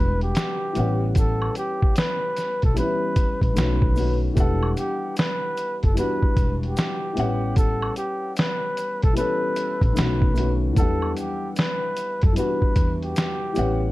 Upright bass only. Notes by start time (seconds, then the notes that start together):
Already playing: E1
0.77 A1
2.63 B1
3.42 A1
3.57 B1
4.37 E1
5.84 F#1
6.23 muted upright bass stroke
6.37 E1
7.17 A1
9.04 B1
9.82 A1
9.97 B1
10.77 E2
12.23 F#2
12.62 muted upright bass stroke
12.77 E2
13.58 A1